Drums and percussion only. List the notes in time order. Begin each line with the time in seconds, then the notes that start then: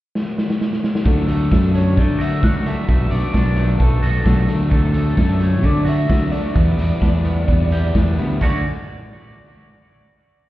0.15 snare
0.38 snare
0.50 snare
0.61 snare
0.73 snare
0.84 snare
0.95 snare
1.06 kick
1.28 closed hi-hat
1.52 kick, snare
1.75 closed hi-hat
1.97 kick
2.21 closed hi-hat
2.43 kick, snare
2.66 closed hi-hat
2.89 kick
3.11 closed hi-hat
3.34 kick, snare
3.56 closed hi-hat
3.80 kick
4.03 closed hi-hat
4.26 kick, snare
4.48 closed hi-hat
4.71 kick
4.94 closed hi-hat
5.17 kick, snare
5.40 closed hi-hat
5.63 kick
5.86 closed hi-hat
6.10 kick, snare
6.32 closed hi-hat
6.56 kick
6.79 closed hi-hat
7.02 kick, snare
7.25 closed hi-hat
7.48 kick
7.72 closed hi-hat
7.95 kick, snare
8.18 closed hi-hat
8.41 kick, crash